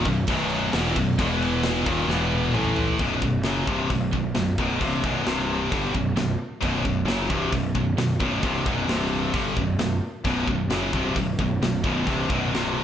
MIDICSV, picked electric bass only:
0, 0, Header, 1, 2, 480
1, 0, Start_track
1, 0, Tempo, 453172
1, 1259, Time_signature, 4, 2, 24, 8
1, 13598, End_track
2, 0, Start_track
2, 0, Title_t, "Picked electric bass"
2, 0, Program_c, 0, 34
2, 58, Note_on_c, 0, 23, 77
2, 284, Note_off_c, 0, 23, 0
2, 292, Note_on_c, 0, 23, 89
2, 742, Note_off_c, 0, 23, 0
2, 780, Note_on_c, 0, 28, 92
2, 1003, Note_off_c, 0, 28, 0
2, 1019, Note_on_c, 0, 23, 85
2, 1242, Note_off_c, 0, 23, 0
2, 1255, Note_on_c, 0, 28, 97
2, 1932, Note_off_c, 0, 28, 0
2, 1968, Note_on_c, 0, 27, 95
2, 2180, Note_off_c, 0, 27, 0
2, 2186, Note_on_c, 0, 28, 91
2, 2645, Note_off_c, 0, 28, 0
2, 2675, Note_on_c, 0, 33, 96
2, 3129, Note_off_c, 0, 33, 0
2, 3168, Note_on_c, 0, 23, 90
2, 3393, Note_off_c, 0, 23, 0
2, 3403, Note_on_c, 0, 23, 75
2, 3624, Note_off_c, 0, 23, 0
2, 3630, Note_on_c, 0, 30, 87
2, 3863, Note_off_c, 0, 30, 0
2, 3886, Note_on_c, 0, 24, 82
2, 4111, Note_off_c, 0, 24, 0
2, 4128, Note_on_c, 0, 23, 71
2, 4352, Note_off_c, 0, 23, 0
2, 4369, Note_on_c, 0, 23, 71
2, 4593, Note_off_c, 0, 23, 0
2, 4610, Note_on_c, 0, 23, 78
2, 4833, Note_off_c, 0, 23, 0
2, 4853, Note_on_c, 0, 23, 89
2, 5075, Note_off_c, 0, 23, 0
2, 5091, Note_on_c, 0, 24, 91
2, 5313, Note_off_c, 0, 24, 0
2, 5338, Note_on_c, 0, 23, 93
2, 5557, Note_off_c, 0, 23, 0
2, 5563, Note_on_c, 0, 24, 85
2, 6012, Note_off_c, 0, 24, 0
2, 6055, Note_on_c, 0, 31, 88
2, 6276, Note_off_c, 0, 31, 0
2, 6295, Note_on_c, 0, 23, 72
2, 6498, Note_off_c, 0, 23, 0
2, 6504, Note_on_c, 0, 23, 77
2, 6739, Note_off_c, 0, 23, 0
2, 7018, Note_on_c, 0, 23, 92
2, 7237, Note_off_c, 0, 23, 0
2, 7254, Note_on_c, 0, 23, 76
2, 7475, Note_off_c, 0, 23, 0
2, 7481, Note_on_c, 0, 30, 89
2, 7709, Note_off_c, 0, 30, 0
2, 7735, Note_on_c, 0, 24, 87
2, 7956, Note_off_c, 0, 24, 0
2, 7967, Note_on_c, 0, 23, 75
2, 8192, Note_off_c, 0, 23, 0
2, 8209, Note_on_c, 0, 23, 69
2, 8423, Note_off_c, 0, 23, 0
2, 8429, Note_on_c, 0, 23, 74
2, 8663, Note_off_c, 0, 23, 0
2, 8684, Note_on_c, 0, 23, 93
2, 8911, Note_off_c, 0, 23, 0
2, 8927, Note_on_c, 0, 24, 93
2, 9153, Note_off_c, 0, 24, 0
2, 9169, Note_on_c, 0, 23, 94
2, 9385, Note_off_c, 0, 23, 0
2, 9392, Note_on_c, 0, 24, 88
2, 9848, Note_off_c, 0, 24, 0
2, 9890, Note_on_c, 0, 31, 86
2, 10115, Note_off_c, 0, 31, 0
2, 10125, Note_on_c, 0, 23, 74
2, 10353, Note_off_c, 0, 23, 0
2, 10364, Note_on_c, 0, 23, 71
2, 10592, Note_off_c, 0, 23, 0
2, 10850, Note_on_c, 0, 23, 92
2, 11076, Note_off_c, 0, 23, 0
2, 11090, Note_on_c, 0, 23, 76
2, 11300, Note_off_c, 0, 23, 0
2, 11307, Note_on_c, 0, 30, 88
2, 11544, Note_off_c, 0, 30, 0
2, 11583, Note_on_c, 0, 24, 81
2, 11804, Note_off_c, 0, 24, 0
2, 11816, Note_on_c, 0, 23, 73
2, 12040, Note_off_c, 0, 23, 0
2, 12058, Note_on_c, 0, 23, 68
2, 12282, Note_off_c, 0, 23, 0
2, 12302, Note_on_c, 0, 23, 79
2, 12524, Note_off_c, 0, 23, 0
2, 12537, Note_on_c, 0, 23, 91
2, 12762, Note_off_c, 0, 23, 0
2, 12786, Note_on_c, 0, 24, 97
2, 13007, Note_off_c, 0, 24, 0
2, 13022, Note_on_c, 0, 23, 94
2, 13246, Note_off_c, 0, 23, 0
2, 13257, Note_on_c, 0, 24, 91
2, 13598, Note_off_c, 0, 24, 0
2, 13598, End_track
0, 0, End_of_file